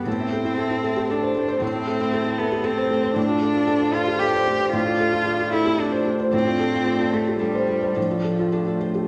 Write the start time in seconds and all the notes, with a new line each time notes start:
0.06 A2 A3 C4 E4 A4
0.20 E4 E5
0.33 A4 C5
0.45 E4 E5
0.58 A4
0.71 E4 E5
0.83 A4 A5
0.96 G4 C5
1.10 D4 A4
1.22 C5 A5
1.36 A3 C5
1.48 C5
1.61 A2 C4 A4
1.75 E4 E5
1.87 A4 C5
2.00 E4 E5
2.13 A4
2.26 E4 E5
2.38 B3 A4 A5
2.52 G4 C5
2.64 C4 A4
2.77 C5 A5
2.91 A3 C5
3.04 C5
3.15 A2 A3 D4 F4 C5
3.29 F4 A4
3.42 F4 A4
3.55 F4 A4
3.68 D4 A4
3.81 F4 A4
3.94 F4 A4 C5
4.07 F4 G4
4.20 D4 G4 A4
4.34 C5
4.46 A3 F4
4.59 F4 C5
4.73 A2 D4 F4
4.86 F4 A4
4.99 F4 A4
5.12 F4 A4
5.26 D4 A4
5.39 F4 A4
5.53 E4 A4 C5
5.65 C4 G4
5.79 D4 A4
5.92 C5
6.05 A3
6.20 C5
6.31 A2 C4 D4
6.45 F4 A4
6.60 A4
6.72 F4 A4
6.85 D4 A4
6.98 F4 A4
7.12 A3 A4 C5
7.28 G4
7.39 G3 D4 A4
7.53 C5
7.70 A3
7.82 C5
7.95 A2 F3 A3 D4 F4 C5
8.11 F4 A4
8.24 A4
8.39 F4 A4
8.52 D4 A4
8.66 F4 A4
8.81 A4 C5
8.95 G4